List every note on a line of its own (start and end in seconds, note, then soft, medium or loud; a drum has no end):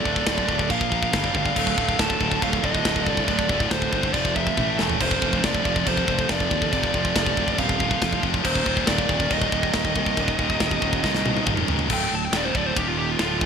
0.00 0.68 D3 medium
0.00 0.68 A3 medium
0.00 1.11 F4 medium
0.00 0.69 A4 medium
0.00 0.67 D5 loud
0.04 0.23 D1 medium
0.04 0.25 D2 medium
0.04 0.25 A2 medium
0.04 0.26 D3 medium
0.04 kick medium
0.16 kick medium
0.26 0.45 D1 medium
0.26 0.47 D2 medium
0.26 0.47 A2 medium
0.26 0.48 D3 medium
0.26 kick medium
0.26 snare loud
0.26 china medium
0.38 kick medium
0.48 0.67 D1 medium
0.48 0.69 D2 medium
0.48 0.69 A2 medium
0.48 0.69 D3 loud
0.48 kick medium
0.59 kick medium
0.69 1.05 A#1 medium
0.69 1.12 A#2 medium
0.69 0.90 A#2 loud
0.69 1.13 F3 medium
0.69 0.90 F3 loud
0.69 0.91 A#3 loud
0.69 1.13 A#4 medium
0.69 1.36 F5 loud
0.69 kick medium
0.69 china medium
0.81 kick medium
0.91 1.11 A#2 medium
0.91 1.12 F3 medium
0.91 1.12 A#3 loud
0.91 kick medium
1.03 kick medium
1.12 1.31 G1 loud
1.12 1.32 G2 loud
1.12 1.33 D3 loud
1.12 1.56 D3 medium
1.12 1.33 G3 loud
1.12 1.56 G3 medium
1.12 1.56 G4 medium
1.12 1.56 D5 medium
1.12 kick loud
1.12 snare loud
1.12 china medium
1.24 kick medium
1.34 1.53 G1 loud
1.34 1.54 G2 medium
1.34 1.55 D3 medium
1.34 1.55 G3 medium
1.34 2.02 F5 loud
1.34 kick medium
1.46 kick medium
1.55 1.74 D1 loud
1.55 1.75 D2 loud
1.55 1.75 A2 loud
1.55 1.76 D3 loud
1.55 4.12 D3 medium
1.55 4.12 A3 medium
1.55 4.55 F4 medium
1.55 4.12 A4 medium
1.55 kick medium
1.55 crash loud
1.55 china medium
1.67 kick medium
1.76 1.96 D1 medium
1.76 1.97 D2 medium
1.76 1.98 A2 loud
1.76 1.98 D3 loud
1.76 kick medium
1.89 kick medium
1.98 2.17 D1 loud
1.98 2.19 D2 medium
1.98 2.19 A2 medium
1.98 2.20 D3 loud
1.98 2.44 A5 loud
1.98 kick medium
1.98 snare loud
1.98 china medium
2.10 kick medium
2.20 2.38 D1 loud
2.20 2.40 D2 medium
2.20 2.41 A2 medium
2.20 2.41 D3 loud
2.20 kick medium
2.31 kick medium
2.41 2.60 D1 medium
2.41 2.62 D2 medium
2.41 2.62 A2 loud
2.41 2.63 D3 loud
2.41 2.64 F5 loud
2.41 kick loud
2.41 china medium
2.53 kick medium
2.63 2.81 D1 loud
2.63 2.84 D2 medium
2.63 2.84 A2 medium
2.63 2.85 D3 loud
2.63 3.08 D#5 loud
2.63 kick medium
2.75 kick medium
2.85 3.03 D1 medium
2.85 3.06 D2 medium
2.85 3.06 A2 medium
2.85 3.06 D3 loud
2.85 kick medium
2.85 snare loud
2.85 china medium
2.96 kick medium
3.06 3.24 C2 loud
3.06 3.26 D2 medium
3.06 3.27 A2 medium
3.06 3.27 D3 loud
3.06 3.25 D5 loud
3.06 kick medium
3.17 kick medium
3.28 3.46 D1 loud
3.28 3.48 D2 loud
3.28 3.49 A2 loud
3.28 3.49 D3 loud
3.28 3.71 D5 loud
3.28 kick medium
3.28 china medium
3.39 kick medium
3.49 3.68 D1 loud
3.49 3.69 D2 medium
3.49 3.69 A2 loud
3.49 3.70 D3 medium
3.49 kick medium
3.60 kick medium
3.70 3.89 D1 loud
3.70 3.91 D2 medium
3.70 3.92 A2 medium
3.70 3.92 D3 loud
3.70 4.11 C5 medium
3.70 kick medium
3.70 snare loud
3.70 china medium
3.82 kick medium
3.92 4.15 G1 medium
3.92 4.13 D2 medium
3.92 4.13 A2 medium
3.92 4.13 D3 medium
3.92 kick medium
4.03 kick medium
4.13 4.50 F1 medium
4.13 4.34 F2 loud
4.13 4.57 C3 medium
4.13 4.34 C3 loud
4.13 4.56 F3 medium
4.13 4.35 F3 loud
4.13 4.56 C5 medium
4.13 4.34 D5 medium
4.13 kick medium
4.13 china medium
4.25 kick medium
4.35 4.56 F2 medium
4.35 4.56 C3 medium
4.35 4.56 F3 loud
4.35 4.76 E5 medium
4.35 kick medium
4.47 kick medium
4.56 4.76 A1 medium
4.56 5.00 A2 medium
4.56 4.78 A2 loud
4.56 4.99 E3 medium
4.56 4.78 E3 loud
4.56 4.79 A3 loud
4.56 4.99 E4 medium
4.56 8.40 A4 medium
4.56 kick medium
4.56 high tom medium
4.79 4.98 E1 loud
4.79 4.99 A2 medium
4.79 4.99 E3 medium
4.79 5.01 A3 loud
4.79 snare loud
4.89 floor tom medium
4.99 5.18 F1 loud
4.99 5.21 F2 loud
4.99 8.41 C3 medium
4.99 5.21 C3 loud
4.99 5.22 F3 loud
4.99 8.41 A3 medium
4.99 8.41 F4 medium
4.99 5.37 C5 medium
4.99 kick medium
4.99 china medium
4.99 crash loud
5.11 kick medium
5.22 5.40 F1 medium
5.22 5.42 F2 medium
5.22 5.42 C3 medium
5.22 5.43 F3 loud
5.22 kick medium
5.33 kick medium
5.38 5.44 C5 medium
5.43 5.61 F1 medium
5.43 5.63 F2 medium
5.43 5.63 C3 medium
5.43 5.64 F3 medium
5.43 5.88 D5 medium
5.43 kick medium
5.43 snare loud
5.43 china medium
5.54 kick medium
5.64 5.83 F1 medium
5.64 5.84 F2 medium
5.64 5.85 C3 loud
5.64 5.85 F3 loud
5.64 kick medium
5.76 kick medium
5.85 6.05 F1 medium
5.85 6.05 F2 medium
5.85 6.06 C3 loud
5.85 6.06 F3 loud
5.85 6.28 C5 medium
5.85 kick loud
5.85 china medium
5.97 kick medium
6.07 6.26 F1 medium
6.07 6.27 F2 medium
6.07 6.27 C3 medium
6.07 6.27 F3 medium
6.07 kick medium
6.19 kick medium
6.28 6.47 F1 medium
6.28 6.49 F2 medium
6.28 6.49 C3 loud
6.28 6.49 F3 loud
6.28 6.71 D5 loud
6.28 kick medium
6.28 snare loud
6.28 china medium
6.40 kick medium
6.50 6.69 D#2 loud
6.50 6.70 F2 medium
6.50 6.71 C3 medium
6.50 6.71 F3 loud
6.50 kick medium
6.62 kick medium
6.72 6.91 F1 medium
6.72 6.92 F2 loud
6.72 6.92 C3 loud
6.72 6.93 F3 loud
6.72 7.61 D5 loud
6.72 kick medium
6.72 china medium
6.83 kick medium
6.93 7.12 F1 medium
6.93 7.13 F2 medium
6.93 7.14 C3 loud
6.93 7.14 F3 loud
6.93 kick medium
7.05 kick medium
7.14 7.33 F1 loud
7.14 7.35 F2 loud
7.14 7.35 C3 medium
7.14 7.35 F3 loud
7.14 kick medium
7.14 snare loud
7.14 china medium
7.26 kick medium
7.36 7.55 F1 medium
7.36 7.56 F2 medium
7.36 7.56 C3 medium
7.36 7.56 F3 medium
7.36 kick medium
7.48 kick medium
7.57 7.94 D#1 medium
7.57 7.78 F2 loud
7.57 7.78 C3 loud
7.57 7.79 F3 loud
7.57 8.19 F5 loud
7.57 kick loud
7.57 china medium
7.69 kick medium
7.79 7.99 F2 medium
7.79 8.00 C3 loud
7.79 8.00 F3 medium
7.79 kick medium
7.91 kick medium
8.00 8.20 F1 medium
8.00 8.20 F2 loud
8.00 8.21 C3 loud
8.00 8.22 F3 loud
8.00 kick medium
8.00 snare loud
8.00 china medium
8.13 kick medium
8.22 8.41 F1 loud
8.22 8.43 F2 medium
8.22 8.43 C3 medium
8.22 8.43 F3 loud
8.22 kick medium
8.34 kick medium
8.43 8.63 D#1 loud
8.43 8.65 D#2 loud
8.43 8.65 A#2 loud
8.43 8.66 D#3 loud
8.43 11.86 D#3 medium
8.43 11.86 A#3 medium
8.43 11.86 G4 medium
8.43 11.86 A#4 medium
8.43 8.88 C5 loud
8.43 kick medium
8.43 crash loud
8.43 china medium
8.55 kick medium
8.65 8.84 D#1 loud
8.65 8.87 D#2 medium
8.65 8.86 A#2 loud
8.65 8.88 D#3 medium
8.65 kick medium
8.77 kick medium
8.87 9.06 D#1 loud
8.87 9.09 D#2 medium
8.87 9.08 A#2 medium
8.87 9.10 D#3 loud
8.87 9.32 D5 loud
8.87 kick medium
8.87 snare loud
8.87 china medium
8.98 kick medium
9.09 9.27 D#1 loud
9.09 9.28 D#2 medium
9.09 9.29 A#2 medium
9.09 9.29 D#3 loud
9.09 kick medium
9.20 kick medium
9.29 9.49 D#1 medium
9.29 9.50 D#2 medium
9.29 9.51 A#2 loud
9.29 9.51 D#3 loud
9.29 11.44 D#5 loud
9.29 kick loud
9.29 china medium
9.42 kick medium
9.51 9.70 D#1 loud
9.51 9.72 D#2 medium
9.51 9.72 A#2 medium
9.51 9.73 D#3 loud
9.51 kick medium
9.63 kick medium
9.73 9.92 D#1 medium
9.73 9.93 D#2 medium
9.73 9.94 A#2 medium
9.73 9.94 D#3 medium
9.73 kick medium
9.73 snare loud
9.73 china medium
9.85 kick medium
9.94 10.14 C2 medium
9.94 10.15 D#2 medium
9.94 10.15 A#2 medium
9.94 10.16 D#3 medium
9.94 kick medium
10.06 kick medium
10.16 10.35 D#1 medium
10.16 10.36 D#2 loud
10.16 10.36 A#2 loud
10.16 10.37 D#3 loud
10.16 kick medium
10.16 china medium
10.28 kick medium
10.37 10.56 D#1 medium
10.37 10.58 D#2 medium
10.37 10.58 A#2 medium
10.37 10.59 D#3 medium
10.37 kick medium
10.50 kick medium
10.59 10.78 D#1 loud
10.59 10.80 D#2 medium
10.59 10.80 A#2 medium
10.59 10.81 D#3 loud
10.59 kick loud
10.59 snare loud
10.59 china medium
10.71 kick medium
10.81 11.00 D#1 medium
10.81 11.01 D#2 medium
10.81 11.01 A#2 medium
10.81 11.02 D#3 loud
10.81 kick medium
10.93 kick medium
11.02 11.39 C2 medium
11.02 11.22 D#2 loud
11.02 11.23 A#2 loud
11.02 11.23 D#3 loud
11.02 kick loud
11.02 snare medium
11.14 snare medium
11.24 11.44 D#2 medium
11.24 11.45 A#2 loud
11.24 11.44 D#3 loud
11.24 high tom medium
11.37 high tom medium
11.45 11.65 D#1 medium
11.45 11.66 D#2 medium
11.45 11.67 A#2 loud
11.45 11.67 D#3 loud
11.45 kick loud
11.45 mid tom medium
11.57 mid tom medium
11.67 11.86 C#2 loud
11.67 11.88 D#2 medium
11.67 11.88 A#2 medium
11.67 11.89 D#3 medium
11.67 floor tom loud
11.79 floor tom medium
11.89 12.10 D1 medium
11.89 12.10 D2 medium
11.89 12.11 A2 medium
11.89 12.11 D3 loud
11.89 12.12 G5 loud
11.89 kick loud
11.89 crash loud
12.11 12.31 D1 medium
12.11 12.29 D2 medium
12.11 12.29 A2 medium
12.11 12.24 A5 medium
12.25 12.34 G5 medium
12.33 12.53 D#1 medium
12.33 12.54 D#2 medium
12.33 12.55 A#2 medium
12.33 12.55 D#3 loud
12.33 12.45 D5 medium
12.33 snare loud
12.33 ride bell medium
12.45 12.55 C5 medium
12.55 12.75 D1 medium
12.55 12.76 D2 medium
12.55 12.76 A2 medium
12.55 12.76 D3 loud
12.55 12.66 D5 medium
12.55 kick loud
12.66 12.76 C5 medium
12.77 13.17 D#1 medium
12.77 13.19 D#2 medium
12.77 13.19 A#2 loud
12.77 13.20 D#3 loud
12.77 12.88 G4 medium
12.77 kick loud
12.77 ride bell medium
12.88 12.98 F4 medium
12.99 13.11 G4 medium
13.11 13.19 F4 medium
13.19 13.40 D1 medium
13.19 13.41 D2 medium
13.19 13.40 A2 medium
13.19 13.41 D3 loud
13.19 13.46 F4 loud
13.19 snare loud
13.19 ride bell medium
13.41 13.46 A1 loud
13.41 13.46 A2 medium
13.41 13.46 E3 medium
13.41 13.46 A3 medium
13.41 kick loud